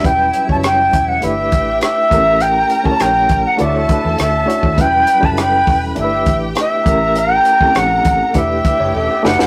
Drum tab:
HH |x-x-x-x-x-x-x-x-|x-x-x-x-x-x-x-x-|x-x-x-o-x-x-x-x-|x-x-x-x-x-x-----|
SD |----r-------r---|----r-r-----r---|----r-r-----r---|----r---------oo|
BD |o--o--o---o---o-|---o--o---o----o|o--o--o---o---o-|---o--o-o-o-----|